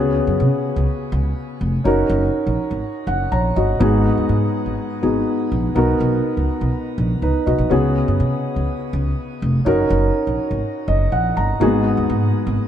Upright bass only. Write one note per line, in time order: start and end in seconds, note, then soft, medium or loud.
0.00 0.18 C#2 medium
0.27 0.41 F#2 medium
0.40 0.58 C#3 medium
0.76 0.85 C#2 medium
1.12 1.31 C#2 medium
1.61 1.79 F1 medium
1.85 2.04 F#1 medium
2.09 2.28 F#1 medium
2.47 2.56 A#1 medium
2.71 2.80 G#1 medium
3.07 3.25 F#1 medium
3.32 3.50 A#1 medium
3.56 3.75 G1 medium
3.80 4.08 G#1 loud
4.18 4.27 D#2 medium
4.29 4.48 G#2 medium
4.66 4.75 G#1 medium
5.03 5.21 G#1 medium
5.52 5.70 A#1 medium
5.76 5.94 B1 medium
6.00 6.19 B1 medium
6.37 6.46 C#2 medium
6.61 6.70 B1 medium
6.98 7.16 A#1 medium
7.22 7.31 C#2 medium
7.47 7.56 B1 medium
7.58 7.68 A#1 medium
7.71 7.98 C#2 medium
8.08 8.21 F#2 medium
8.20 8.38 C#3 medium
8.56 8.65 C#2 medium
8.93 9.11 C#2 medium
9.42 9.60 F1 medium
9.66 9.84 F#1 medium
9.90 10.09 F#1 medium
10.27 10.36 A#1 medium
10.51 10.60 G#1 medium
10.88 11.06 F#1 medium
11.12 11.30 A#1 medium
11.37 11.55 G1 medium
11.61 11.88 G#1 loud
11.97 12.07 D#2 medium
12.10 12.28 G#2 medium
12.47 12.56 G#1 medium